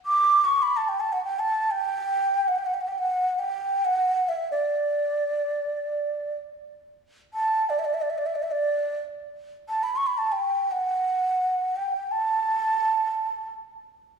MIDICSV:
0, 0, Header, 1, 2, 480
1, 0, Start_track
1, 0, Tempo, 500000
1, 13626, End_track
2, 0, Start_track
2, 0, Title_t, "Ney"
2, 0, Program_c, 0, 77
2, 55, Note_on_c, 0, 86, 85
2, 427, Note_on_c, 0, 85, 84
2, 442, Note_off_c, 0, 86, 0
2, 600, Note_on_c, 0, 83, 88
2, 614, Note_off_c, 0, 85, 0
2, 738, Note_on_c, 0, 81, 78
2, 752, Note_off_c, 0, 83, 0
2, 852, Note_on_c, 0, 79, 76
2, 866, Note_off_c, 0, 81, 0
2, 962, Note_on_c, 0, 81, 77
2, 976, Note_off_c, 0, 79, 0
2, 1079, Note_on_c, 0, 78, 68
2, 1094, Note_off_c, 0, 81, 0
2, 1178, Note_off_c, 0, 78, 0
2, 1193, Note_on_c, 0, 79, 73
2, 1337, Note_on_c, 0, 81, 81
2, 1352, Note_off_c, 0, 79, 0
2, 1642, Note_on_c, 0, 79, 87
2, 1656, Note_off_c, 0, 81, 0
2, 2382, Note_on_c, 0, 78, 65
2, 2396, Note_off_c, 0, 79, 0
2, 2482, Note_on_c, 0, 79, 65
2, 2496, Note_off_c, 0, 78, 0
2, 2555, Note_on_c, 0, 78, 65
2, 2569, Note_off_c, 0, 79, 0
2, 2630, Note_on_c, 0, 79, 67
2, 2644, Note_off_c, 0, 78, 0
2, 2697, Note_on_c, 0, 78, 63
2, 2712, Note_off_c, 0, 79, 0
2, 2764, Note_on_c, 0, 79, 64
2, 2778, Note_off_c, 0, 78, 0
2, 2863, Note_on_c, 0, 78, 76
2, 2878, Note_off_c, 0, 79, 0
2, 3252, Note_on_c, 0, 79, 71
2, 3266, Note_off_c, 0, 78, 0
2, 3696, Note_on_c, 0, 78, 74
2, 3710, Note_off_c, 0, 79, 0
2, 4115, Note_on_c, 0, 76, 68
2, 4130, Note_off_c, 0, 78, 0
2, 4309, Note_off_c, 0, 76, 0
2, 4333, Note_on_c, 0, 74, 73
2, 6084, Note_off_c, 0, 74, 0
2, 7044, Note_on_c, 0, 81, 82
2, 7388, Note_on_c, 0, 74, 65
2, 7403, Note_off_c, 0, 81, 0
2, 7479, Note_on_c, 0, 76, 68
2, 7493, Note_off_c, 0, 74, 0
2, 7533, Note_on_c, 0, 74, 60
2, 7548, Note_off_c, 0, 76, 0
2, 7623, Note_on_c, 0, 76, 66
2, 7638, Note_off_c, 0, 74, 0
2, 7695, Note_on_c, 0, 74, 61
2, 7710, Note_off_c, 0, 76, 0
2, 7776, Note_on_c, 0, 76, 63
2, 7791, Note_off_c, 0, 74, 0
2, 7855, Note_on_c, 0, 74, 61
2, 7869, Note_off_c, 0, 76, 0
2, 7932, Note_on_c, 0, 76, 62
2, 7946, Note_off_c, 0, 74, 0
2, 8019, Note_on_c, 0, 74, 57
2, 8033, Note_off_c, 0, 76, 0
2, 8092, Note_on_c, 0, 76, 57
2, 8106, Note_off_c, 0, 74, 0
2, 8172, Note_on_c, 0, 74, 69
2, 8186, Note_off_c, 0, 76, 0
2, 8609, Note_off_c, 0, 74, 0
2, 9303, Note_on_c, 0, 81, 74
2, 9440, Note_on_c, 0, 83, 81
2, 9455, Note_off_c, 0, 81, 0
2, 9566, Note_on_c, 0, 85, 77
2, 9581, Note_off_c, 0, 83, 0
2, 9666, Note_on_c, 0, 83, 77
2, 9680, Note_off_c, 0, 85, 0
2, 9772, Note_on_c, 0, 81, 79
2, 9786, Note_off_c, 0, 83, 0
2, 9908, Note_on_c, 0, 79, 72
2, 9923, Note_off_c, 0, 81, 0
2, 10286, Note_on_c, 0, 78, 80
2, 10300, Note_off_c, 0, 79, 0
2, 11287, Note_on_c, 0, 79, 72
2, 11301, Note_off_c, 0, 78, 0
2, 11629, Note_on_c, 0, 81, 75
2, 11644, Note_off_c, 0, 79, 0
2, 12968, Note_off_c, 0, 81, 0
2, 13626, End_track
0, 0, End_of_file